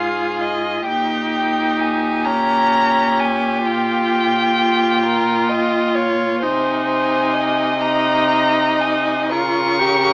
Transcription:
0.00 0.83 G#2 soft
0.00 0.89 F4 soft
0.00 0.87 G#4 soft
0.00 0.42 F5 soft
0.41 0.86 D#5 medium
0.86 6.43 A#2 soft
0.86 2.27 D#4 soft
0.86 5.05 G4 soft
0.86 1.81 G5 medium
1.79 2.26 G#5 medium
2.25 3.65 C#4 soft
2.25 3.21 A#5 medium
3.19 3.67 G#5 medium
3.65 6.43 F4 soft
3.65 5.95 G5 medium
5.04 5.51 A#4 medium
5.49 5.96 D#5 soft
5.95 6.40 C#5 medium
6.41 9.31 C3 medium
6.41 7.80 D#4 soft
6.41 6.86 C5 medium
6.41 7.82 G#5 medium
6.86 7.35 C5 medium
7.34 9.32 D#5 medium
7.81 9.33 D#4 soft
7.81 8.82 A#5 medium
8.80 9.31 G#5 medium
9.30 10.13 C#3 medium
9.30 9.81 F4 soft
9.30 10.13 A#4 medium
9.30 10.13 C#6 medium
9.79 10.13 G4 soft

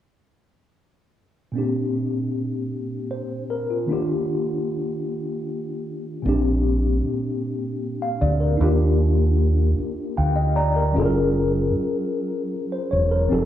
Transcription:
1.52 3.84 A#2 medium
1.52 3.85 A#3 soft
1.52 3.86 C4 soft
1.56 3.86 D4 soft
1.56 3.10 G4 medium
3.11 3.48 C5 medium
3.50 3.68 A#4 medium
3.70 3.90 F4 soft
3.86 6.19 D#3 medium
3.86 6.20 A#3 medium
3.86 6.20 D4 medium
3.91 6.21 F4 soft
3.91 6.22 G4 medium
6.22 6.99 A#1 medium
6.22 8.54 A#2 medium
6.22 8.55 A#3 medium
6.22 8.56 C4 soft
6.27 8.57 D4 medium
6.27 8.58 G4 medium
7.04 muted fingered electric bass stroke soft
8.02 8.20 F5 medium
8.21 8.56 D2 medium
8.21 8.39 D5 medium
8.40 8.77 A#4 soft
8.57 9.74 D#2 loud
8.57 10.90 A#3 medium
8.57 10.91 D4 medium
8.57 10.90 D#4 medium
8.62 10.92 F4 soft
8.62 10.93 G4 medium
9.78 muted fingered electric bass stroke soft
10.17 10.98 D2 medium
10.17 10.35 F5 medium
10.17 10.53 G5 medium
10.36 10.54 D#5 medium
10.56 10.74 D5 medium
10.56 10.92 A#5 medium
10.76 11.04 A#4 medium
10.92 11.70 F#1 medium
10.92 13.25 F#3 medium
10.92 13.26 C#4 medium
10.92 13.27 F4 medium
10.97 13.27 G#4 medium
10.97 11.03 A4 medium
11.06 12.54 A#4 medium
11.75 muted fingered electric bass stroke soft
12.73 12.90 C5 medium
12.91 13.27 E1 medium
12.91 13.10 C#5 medium
13.11 13.45 A#4 medium
13.28 13.45 F1 medium
13.28 13.45 F3 medium
13.28 13.45 C4 medium
13.28 13.45 D#4 soft
13.33 13.45 G4 medium
13.33 13.45 A4 medium

